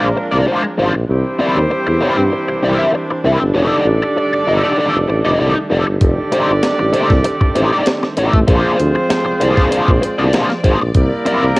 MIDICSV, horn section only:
0, 0, Header, 1, 2, 480
1, 0, Start_track
1, 0, Tempo, 616650
1, 844, Time_signature, 4, 2, 24, 8
1, 9027, End_track
2, 0, Start_track
2, 0, Title_t, "Horn section"
2, 0, Program_c, 0, 61
2, 0, Note_on_c, 0, 58, 87
2, 0, Note_on_c, 0, 62, 85
2, 0, Note_on_c, 0, 65, 90
2, 0, Note_on_c, 0, 70, 95
2, 572, Note_off_c, 0, 62, 0
2, 572, Note_off_c, 0, 65, 0
2, 573, Note_off_c, 0, 58, 0
2, 573, Note_off_c, 0, 70, 0
2, 850, Note_on_c, 0, 67, 88
2, 851, Note_on_c, 0, 64, 88
2, 852, Note_on_c, 0, 60, 87
2, 852, Note_on_c, 0, 72, 94
2, 2496, Note_off_c, 0, 67, 0
2, 2497, Note_off_c, 0, 60, 0
2, 2497, Note_off_c, 0, 64, 0
2, 2497, Note_off_c, 0, 72, 0
2, 2768, Note_on_c, 0, 69, 79
2, 2770, Note_on_c, 0, 62, 93
2, 2770, Note_on_c, 0, 74, 102
2, 2771, Note_on_c, 0, 67, 84
2, 4415, Note_off_c, 0, 69, 0
2, 4416, Note_off_c, 0, 62, 0
2, 4416, Note_off_c, 0, 74, 0
2, 4417, Note_off_c, 0, 67, 0
2, 4685, Note_on_c, 0, 69, 85
2, 4686, Note_on_c, 0, 62, 94
2, 4686, Note_on_c, 0, 74, 102
2, 4688, Note_on_c, 0, 67, 87
2, 6334, Note_off_c, 0, 62, 0
2, 6334, Note_off_c, 0, 69, 0
2, 6334, Note_off_c, 0, 74, 0
2, 6335, Note_off_c, 0, 67, 0
2, 6600, Note_on_c, 0, 60, 90
2, 6600, Note_on_c, 0, 65, 89
2, 6600, Note_on_c, 0, 68, 91
2, 6600, Note_on_c, 0, 72, 98
2, 8250, Note_off_c, 0, 65, 0
2, 8251, Note_off_c, 0, 60, 0
2, 8251, Note_off_c, 0, 68, 0
2, 8251, Note_off_c, 0, 72, 0
2, 8529, Note_on_c, 0, 58, 89
2, 8529, Note_on_c, 0, 70, 96
2, 8530, Note_on_c, 0, 64, 94
2, 8532, Note_on_c, 0, 67, 93
2, 9027, Note_off_c, 0, 58, 0
2, 9027, Note_off_c, 0, 64, 0
2, 9027, Note_off_c, 0, 67, 0
2, 9027, Note_off_c, 0, 70, 0
2, 9027, End_track
0, 0, End_of_file